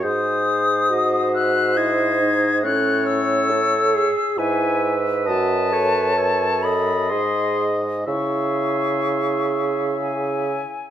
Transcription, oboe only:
\new Staff \with { instrumentName = "Oboe" } { \time 3/4 \key cis \minor \tempo 4 = 68 bis'4 dis''8 e''8 dis''4 | cis''4. r8 e''4 | dis''8 cis''8 cis''8 dis''4. | e''2~ e''8 r8 | }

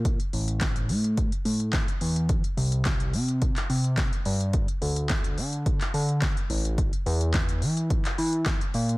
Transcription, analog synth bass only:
\new Staff \with { instrumentName = "Analog synth bass" } { \clef bass \time 4/4 \key a \phrygian \tempo 4 = 107 bes,8 a,,4 a,4 a,4 e,8~ | e,8 c,4 c4 c4 g,8~ | g,8 d,4 d4 d4 a,,8~ | a,,8 e,4 e4 e4 bes,8 | }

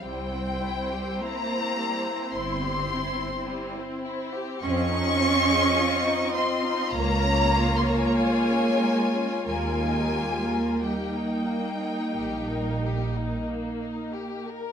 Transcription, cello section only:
\new Staff \with { instrumentName = "Cello section" } { \time 4/4 \key c \phrygian \tempo 4 = 50 g4 bes4 c'4. r8 | \key ees \mixolydian des'4. c'8 bes4 aes4 | aes4 g2 r4 | }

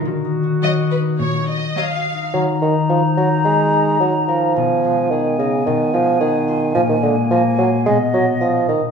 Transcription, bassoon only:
\new Staff \with { instrumentName = "Bassoon" } { \clef bass \time 4/4 \key ees \minor \tempo 4 = 108 r1 | ges8 ees8 f8 ges8 aes4 ges8 f8~ | f4 ees8 des8 ees8 f8 ees4 | f16 ees16 d8 f8 ges8 aes8 fis8 f8 dis8 | }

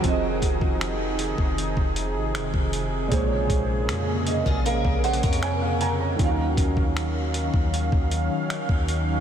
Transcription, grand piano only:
\new Staff \with { instrumentName = "Grand piano" } { \time 4/4 \key ees \dorian \tempo 4 = 78 << { ges''16 r2. r8. | r4. ees''8 f''8 ges''8 <des'' aes''>16 f''16 <aes'' bes''>16 bes''16~ | bes''16 r2. r8. | } \\ { <f c' g' aes' ees''>1 | <bes, aes c'' des''>1 | <ees des' f' ges' f''>1 | } >> }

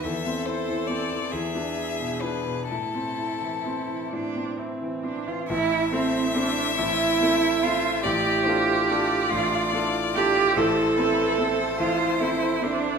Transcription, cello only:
\new Staff \with { instrumentName = "Cello" } { \time 6/8 \key a \minor \tempo 4. = 47 a'4. gis'4. | e'4. d'8 c'8 d'16 f'16 | e'8 c'8 d'8 e'4 f'8 | g'4. f'8 r8 g'8 |
a'4. f'8 e'8 d'8 | }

